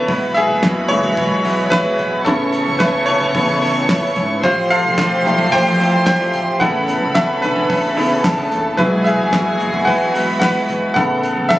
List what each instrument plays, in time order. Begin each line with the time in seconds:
Already playing: upright piano B3 E4 A4 B4 C#5
0.08 upright bass E1, string section E3 G#3 F#4, clean electric guitar F#3 G#3 B3 E4, violin section B4 B5, kick, open hi-hat
0.34 upright piano G#4 E5, hi-hat pedal, open hi-hat
0.50 upright bass F#1
0.62 clean electric guitar E2 B2 F#3 G#3 B3 E4, kick, snare, clap, hi-hat pedal, open hi-hat
0.88 upright bass F#1, upright piano E3 F#3 G#3 E4 C#5, hi-hat pedal, open hi-hat
1.03 clean electric guitar E2 B2 F#3 G#3 B3 E4, floor tom
1.17 upright bass E1, kick, hi-hat pedal, open hi-hat
1.44 clean electric guitar E2 B2 F#3 G#3 B3 E4, hi-hat pedal, open hi-hat
1.70 upright piano E4 B4, kick, snare, clap, hi-hat pedal, open hi-hat
1.85 clean electric guitar E2 B2 F#3 G#3 B3 E4
1.99 floor tom, hi-hat pedal, open hi-hat
2.25 upright bass A1, string section C#3 B3 A4, upright piano C#3 A3 B3 C#4 A4, clean electric guitar E3 B3 C#4 E4, violin section C#5 C#6, kick, hi-hat pedal, open hi-hat
2.53 hi-hat pedal, open hi-hat
2.67 upright bass C#2
2.79 clean electric guitar A2 E3 B3 C#4 E4, upright piano E4 B4, kick, snare, clap, hi-hat pedal, open hi-hat
3.06 upright bass B1, upright piano E4 C#5, hi-hat pedal, open hi-hat
3.20 clean electric guitar A2 E3 B3 C#4 E4, floor tom
3.35 upright bass A1, upright piano C#3 A3 B3, kick, hi-hat pedal, open hi-hat
3.61 clean electric guitar A2 E3 B3 C#4 E4, hi-hat pedal, open hi-hat
3.89 kick, snare, clap, hi-hat pedal, open hi-hat
4.02 clean electric guitar A2 E3 B3 C#4 E4
4.16 upright bass G#1, floor tom, hi-hat pedal, open hi-hat
4.43 upright bass A1, clean electric guitar F3 G3 C4 F4, string section F3 A3 G4, upright piano F4 C5, violin section C5 C6, kick, hi-hat pedal, open hi-hat
4.70 upright piano A4 F5, hi-hat pedal, open hi-hat
4.84 upright bass B1
4.97 clean electric guitar A2 F3 G3 C4 F4, kick, snare, clap, hi-hat pedal, open hi-hat
5.25 upright bass B1, upright piano F3 G3 A3, hi-hat pedal, open hi-hat
5.38 clean electric guitar A2 F3 G3 C4 F4, floor tom
5.52 upright bass A1, upright piano C5 G5, kick, hi-hat pedal, open hi-hat
5.79 clean electric guitar A2 F3 G3 C4 F4, hi-hat pedal, open hi-hat
6.06 upright piano C5 G5, kick, snare, clap, hi-hat pedal, open hi-hat
6.20 clean electric guitar A2 F3 G3 C4 F4
6.33 floor tom, hi-hat pedal, open hi-hat
6.60 upright bass A1, upright piano C#3 A3 B3 A4 F#5, clean electric guitar E3 B3 C#4 E4, string section B3 C#4 A4, violin section B4 B5, kick, hi-hat pedal, open hi-hat
6.88 hi-hat pedal, open hi-hat
7.02 upright bass C#2
7.15 clean electric guitar A2 E3 B3 C#4 E4, upright piano A4 E5, kick, snare, clap, hi-hat pedal, open hi-hat
7.42 upright bass B1, upright piano D3 B4, hi-hat pedal, open hi-hat
7.55 clean electric guitar A2 E3 B3 C#4 E4, floor tom
7.70 upright bass A1, kick, hi-hat pedal, open hi-hat
7.96 clean electric guitar A2 E3 B3 C#4 E4, upright piano C#3 A3 B3, hi-hat pedal, open hi-hat
8.24 violin section A4 A5, kick, snare, clap, hi-hat pedal, open hi-hat
8.37 clean electric guitar A2 E3 B3 C#4 E4, floor tom
8.51 upright bass F#1, floor tom, hi-hat pedal, open hi-hat
8.77 upright bass E1, upright piano E3 F#3 G#3 E4 B4, string section E3 G#3 F#4, clean electric guitar F#3 G#3 B3 E4, violin section G#4 G#5, kick, hi-hat pedal, open hi-hat
9.04 upright piano G#4 E5, hi-hat pedal, open hi-hat
9.19 upright bass F#1
9.32 clean electric guitar E2 B2 F#3 G#3 B3 E4, kick, snare, clap, hi-hat pedal, open hi-hat
9.60 upright bass F#1, hi-hat pedal, open hi-hat
9.73 clean electric guitar E2 B2 F#3 G#3 B3 E4, floor tom
9.85 upright bass E1, upright piano B4 F#5, kick, hi-hat pedal, open hi-hat
10.13 clean electric guitar E2 B2 F#3 G#3 B3 E4, violin section B4 B5, hi-hat pedal, open hi-hat
10.40 upright piano B4 F#5, kick, snare, clap, hi-hat pedal, open hi-hat
10.54 clean electric guitar E2 B2 F#3 G#3 B3 E4
10.69 floor tom, hi-hat pedal, open hi-hat
10.94 upright bass A1, upright piano C#3 A3 B3 A4 F#5, string section C#3 B3 A4, kick, hi-hat pedal, open hi-hat
11.23 hi-hat pedal, open hi-hat
11.37 upright bass C#2
11.49 upright piano A4 E5, kick, snare, clap, hi-hat pedal, open hi-hat